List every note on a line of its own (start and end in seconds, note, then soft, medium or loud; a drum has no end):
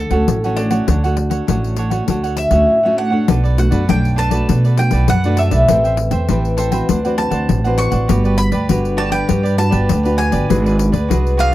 0.00 0.25 D3 medium
0.00 0.59 A4 medium
0.11 0.25 D2 medium
0.11 0.38 A3 medium
0.11 0.38 C#4 medium
0.11 0.38 F#4 medium
0.11 0.42 A4 medium
0.11 0.42 C#5 medium
0.11 0.41 F#5 medium
0.11 pandeiro medium
0.28 0.79 A1 medium
0.28 0.85 A2 medium
0.28 pandeiro medium
0.44 0.69 A3 medium
0.44 0.69 C#4 medium
0.44 0.69 F#4 medium
0.44 0.57 A4 soft
0.44 0.58 C#5 medium
0.44 0.58 F#5 medium
0.44 pandeiro soft
0.57 2.64 D4 medium
0.57 0.72 D4 soft
0.57 0.71 A4 soft
0.57 0.70 C#5 soft
0.57 0.69 F#5 soft
0.57 pandeiro medium
0.70 0.97 A3 medium
0.70 0.98 C#4 medium
0.70 0.98 F#4 medium
0.70 0.87 A4 medium
0.70 0.86 C#5 medium
0.70 0.86 F#5 medium
0.70 pandeiro medium
0.87 1.39 D2 medium
0.87 1.46 D3 medium
0.87 1.02 D4 medium
0.87 1.02 A4 soft
0.87 1.03 C#5 medium
0.87 1.03 F#5 medium
0.87 pandeiro medium
1.04 1.44 A3 medium
1.04 1.45 F#4 medium
1.04 1.15 A4 medium
1.04 1.15 C#5 medium
1.04 1.16 F#5 medium
1.04 pandeiro soft
1.16 muted cavaquinho stroke soft
1.16 pandeiro medium
1.30 1.47 A4 soft
1.30 1.46 C#5 medium
1.30 1.46 F#5 medium
1.30 pandeiro medium
1.47 2.00 A1 medium
1.47 2.06 A2 medium
1.47 1.77 A3 medium
1.47 1.77 C#4 medium
1.47 1.75 D4 soft
1.47 1.77 F#4 medium
1.47 1.77 A4 soft
1.47 1.77 C#5 soft
1.47 1.78 F#5 medium
1.47 pandeiro medium
1.64 pandeiro soft
1.76 1.91 D4 medium
1.76 1.91 A4 medium
1.76 1.90 C#5 medium
1.76 1.89 F#5 medium
1.76 pandeiro medium
1.90 2.03 A3 medium
1.90 2.03 C#4 medium
1.90 2.03 F#4 medium
1.90 2.07 A4 medium
1.90 2.07 C#5 medium
1.90 2.06 F#5 medium
1.90 pandeiro medium
2.08 2.47 D2 medium
2.08 2.66 D3 medium
2.08 2.49 A3 soft
2.08 2.22 D4 soft
2.08 2.50 F#4 medium
2.08 2.23 A4 soft
2.08 2.23 C#5 medium
2.08 2.22 F#5 medium
2.08 pandeiro medium
2.23 2.36 A4 medium
2.23 2.37 C#5 medium
2.23 2.37 F#5 medium
2.23 pandeiro soft
2.37 3.00 E5 medium
2.37 muted cavaquinho stroke soft
2.37 pandeiro medium
2.51 2.65 D2 medium
2.51 2.78 A3 medium
2.51 2.78 C#4 medium
2.51 2.79 F#4 medium
2.51 2.82 A4 soft
2.51 2.82 C#5 medium
2.51 2.81 F#5 medium
2.51 pandeiro medium
2.70 3.26 A2 medium
2.83 3.10 A3 medium
2.83 3.10 C#4 medium
2.83 3.10 F#4 medium
2.83 2.96 A4 medium
2.83 2.97 C#5 medium
2.83 2.97 F#5 medium
2.97 3.12 D4 soft
2.97 3.12 A4 soft
2.97 3.11 C#5 soft
2.97 3.58 F#5 loud
2.97 3.09 F#5 medium
3.10 3.38 A3 medium
3.10 3.39 D4 medium
3.10 3.39 F#4 medium
3.10 3.27 A4 medium
3.10 3.27 C#5 medium
3.10 3.26 F#5 medium
3.28 3.67 B1 medium
3.28 3.86 B2 medium
3.28 3.42 D4 medium
3.28 3.43 A4 medium
3.28 3.43 B4 medium
3.28 3.42 D5 medium
3.28 pandeiro loud
3.44 3.57 A4 medium
3.44 3.57 B4 medium
3.44 3.57 D5 medium
3.44 pandeiro soft
3.57 3.68 A3 medium
3.57 3.69 D4 medium
3.57 3.69 F#4 medium
3.57 3.89 F#5 medium
3.57 muted cavaquinho stroke soft
3.57 pandeiro medium
3.71 3.85 F#2 medium
3.71 3.83 A3 medium
3.71 3.83 D4 medium
3.71 3.83 F#4 medium
3.71 3.87 A4 medium
3.71 3.87 B4 medium
3.71 3.86 D5 medium
3.71 pandeiro medium
3.88 4.40 B1 medium
3.88 4.46 F#2 medium
3.88 4.29 A3 medium
3.88 4.15 D4 medium
3.88 4.29 D4 medium
3.88 4.16 A4 medium
3.88 4.17 B4 medium
3.88 4.17 D5 medium
3.88 4.18 G5 medium
3.88 pandeiro medium
4.05 pandeiro soft
4.16 4.32 D4 medium
4.16 4.32 A4 medium
4.16 4.31 B4 medium
4.16 4.30 D5 medium
4.16 4.79 A5 loud
4.16 pandeiro medium
4.31 4.73 A3 medium
4.31 4.73 D4 medium
4.31 4.74 F#4 medium
4.31 4.47 A4 medium
4.31 4.47 B4 medium
4.31 4.46 D5 medium
4.31 pandeiro medium
4.48 4.88 B2 loud
4.48 5.06 B2 medium
4.48 4.63 D4 soft
4.48 4.63 A4 soft
4.48 4.63 B4 medium
4.48 4.63 D5 soft
4.48 pandeiro medium
4.64 4.78 A4 medium
4.64 4.78 B4 medium
4.64 4.78 D5 medium
4.64 pandeiro soft
4.77 5.07 A3 medium
4.77 5.07 D4 medium
4.77 5.07 F#4 medium
4.77 5.09 G5 medium
4.77 muted cavaquinho stroke soft
4.77 pandeiro medium
4.91 5.06 B1 medium
4.91 5.23 B4 medium
4.91 5.22 D5 medium
4.91 pandeiro medium
4.95 5.23 A4 medium
5.08 5.66 F#2 medium
5.08 5.48 F#2 medium
5.08 5.40 F#5 loud
5.08 pandeiro medium
5.24 5.65 A3 medium
5.24 5.65 D4 medium
5.24 5.65 F#4 medium
5.24 5.38 A4 medium
5.24 5.39 B4 medium
5.24 5.39 D5 medium
5.24 pandeiro soft
5.37 5.53 D4 soft
5.37 5.52 A4 soft
5.37 5.51 B4 soft
5.37 5.50 D5 medium
5.37 7.25 E5 medium
5.37 pandeiro medium
5.51 5.66 B1 medium
5.51 5.67 A4 medium
5.51 5.67 B4 medium
5.51 5.67 D5 medium
5.51 pandeiro medium
5.68 6.08 A1 medium
5.68 6.26 A3 medium
5.68 6.25 C4 medium
5.68 6.25 G4 medium
5.68 5.83 A4 medium
5.68 6.25 B4 medium
5.68 5.83 C5 soft
5.68 5.83 E5 soft
5.68 5.83 G5 medium
5.68 pandeiro medium
5.84 5.96 C5 medium
5.84 5.97 E5 medium
5.84 5.97 G5 medium
5.84 pandeiro soft
5.97 muted cavaquinho stroke soft
5.97 pandeiro medium
6.11 6.25 E2 medium
6.11 6.27 C5 medium
6.11 6.27 E5 medium
6.11 6.26 G5 medium
6.11 pandeiro medium
6.28 6.80 A1 medium
6.28 6.86 E3 medium
6.28 6.70 C4 medium
6.28 6.70 G4 medium
6.28 6.56 A4 soft
6.28 6.70 B4 medium
6.28 6.57 C5 medium
6.28 6.57 E5 medium
6.28 6.58 G5 medium
6.28 pandeiro medium
6.45 pandeiro soft
6.57 6.72 A4 medium
6.57 6.72 C5 medium
6.57 6.71 E5 medium
6.57 6.70 G5 medium
6.57 pandeiro medium
6.71 6.98 C4 medium
6.71 6.99 F#4 medium
6.71 6.99 B4 medium
6.71 6.88 C5 medium
6.71 6.87 E5 medium
6.71 6.87 G5 medium
6.71 pandeiro medium
6.89 7.28 D2 medium
6.89 7.47 D3 medium
6.89 7.03 D4 soft
6.89 7.04 C5 soft
6.89 7.04 D5 medium
6.89 7.03 F#5 medium
6.89 pandeiro medium
7.05 7.15 C4 medium
7.05 7.15 F#4 medium
7.05 7.15 B4 medium
7.05 7.17 C5 medium
7.05 7.18 D5 medium
7.05 7.17 F#5 medium
7.05 pandeiro soft
7.18 7.59 C4 medium
7.18 7.59 F#4 medium
7.18 7.59 B4 medium
7.18 7.78 A5 medium
7.18 muted cavaquinho stroke soft
7.18 pandeiro medium
7.31 7.45 D2 medium
7.31 7.63 C5 medium
7.31 7.62 D5 medium
7.31 7.61 F#5 medium
7.31 pandeiro medium
7.49 7.88 A1 loud
7.49 8.07 A2 medium
7.49 pandeiro medium
7.64 8.06 C4 medium
7.64 8.06 F#4 medium
7.64 8.06 B4 medium
7.64 7.77 C5 medium
7.64 7.78 D5 medium
7.64 7.78 F#5 medium
7.64 pandeiro soft
7.77 7.92 D4 soft
7.77 7.92 C5 soft
7.77 7.91 D5 soft
7.77 7.90 F#5 medium
7.77 8.37 C#6 loud
7.77 pandeiro medium
7.91 8.06 A1 medium
7.91 8.08 C5 medium
7.91 8.07 D5 medium
7.91 8.07 F#5 medium
7.91 pandeiro medium
8.08 8.48 G1 loud
8.08 8.67 G3 medium
8.08 8.49 D4 medium
8.08 8.23 F#4 medium
8.08 8.49 F#4 soft
8.08 8.23 G4 medium
8.08 8.24 B4 medium
8.08 8.49 B4 medium
8.08 8.23 D5 medium
8.08 pandeiro medium
8.24 8.37 G4 medium
8.24 8.37 B4 medium
8.24 8.37 D5 medium
8.24 pandeiro soft
8.37 8.98 B5 loud
8.37 muted cavaquinho stroke soft
8.37 pandeiro medium
8.52 8.66 D2 medium
8.52 8.68 G4 medium
8.52 8.68 B4 medium
8.52 8.67 D5 medium
8.52 pandeiro medium
8.69 9.21 G1 medium
8.69 9.27 D3 medium
8.69 8.98 D4 medium
8.69 8.96 F#4 soft
8.69 8.98 F#4 medium
8.69 8.97 G4 medium
8.69 8.97 B4 medium
8.69 8.99 B4 medium
8.69 8.98 D5 medium
8.69 pandeiro medium
8.85 pandeiro soft
8.97 9.12 F#4 medium
8.97 9.11 G4 medium
8.97 9.10 B4 medium
8.97 9.09 D5 medium
8.97 9.12 A5 loud
8.97 pandeiro medium
9.10 9.54 D4 medium
9.10 9.27 G4 medium
9.10 9.27 B4 medium
9.10 9.54 B4 medium
9.10 9.26 D5 medium
9.10 9.58 G5 loud
9.10 pandeiro medium
9.28 9.68 G2 medium
9.28 9.87 G3 medium
9.28 9.43 F#4 soft
9.28 9.43 G4 soft
9.28 9.43 B4 soft
9.28 9.42 D5 medium
9.28 pandeiro medium
9.43 9.56 G4 medium
9.43 9.56 B4 medium
9.43 9.57 D5 medium
9.43 pandeiro soft
9.57 9.87 D4 medium
9.57 9.88 F#4 medium
9.57 9.88 B4 medium
9.57 10.15 A5 loud
9.57 muted cavaquinho stroke soft
9.57 pandeiro medium
9.70 9.87 G1 medium
9.70 10.02 G4 medium
9.70 10.02 B4 medium
9.70 10.01 D5 medium
9.70 pandeiro medium
9.89 10.29 D2 medium
9.89 10.47 D3 medium
9.89 pandeiro medium
10.03 10.46 D4 medium
10.03 10.46 F#4 medium
10.03 10.16 G4 medium
10.03 10.17 B4 medium
10.03 10.46 B4 medium
10.03 10.18 D5 medium
10.03 pandeiro soft
10.17 10.32 F#4 soft
10.17 10.32 G4 soft
10.17 10.32 B4 medium
10.17 10.30 D5 soft
10.17 11.40 G#5 loud
10.17 pandeiro medium
10.32 10.47 G1 medium
10.32 10.48 G4 medium
10.32 10.48 B4 medium
10.32 10.47 D5 medium
10.32 pandeiro medium
10.49 10.88 G#1 medium
10.49 11.07 G#3 medium
10.49 10.75 D4 medium
10.49 10.63 F#4 medium
10.49 10.75 F#4 medium
10.49 10.64 G#4 medium
10.49 10.64 B4 medium
10.49 10.76 B4 medium
10.49 10.63 D5 medium
10.49 pandeiro medium
10.64 10.77 G#4 medium
10.64 10.78 B4 medium
10.64 10.78 D5 medium
10.64 pandeiro soft
10.78 10.97 D4 medium
10.78 10.97 F#4 medium
10.78 10.98 B4 medium
10.78 muted cavaquinho stroke soft
10.78 pandeiro medium
10.92 11.07 D2 medium
10.92 11.08 G#4 medium
10.92 11.08 B4 medium
10.92 11.08 D5 medium
10.92 pandeiro medium
11.08 11.54 C2 medium
11.08 11.53 G#3 medium
11.08 11.51 D4 medium
11.08 11.36 F#4 medium
11.08 11.51 F#4 medium
11.08 11.37 G#4 medium
11.08 11.38 B4 medium
11.08 11.51 B4 medium
11.08 11.38 D5 medium
11.08 pandeiro medium
11.27 pandeiro soft
11.37 11.53 F#4 medium
11.37 11.53 G#4 medium
11.37 11.52 B4 medium
11.37 11.51 D5 medium
11.37 11.54 F5 loud
11.37 pandeiro medium